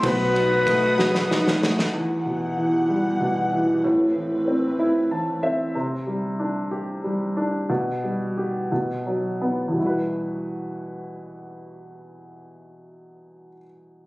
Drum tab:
RD |x-x-x-------|------------|------------|------------|
SD |------oooooo|------------|------------|------------|
BD |o---o-------|------------|------------|------------|

RD |------------|------------|------------|
SD |------------|------------|------------|
BD |------------|------------|------------|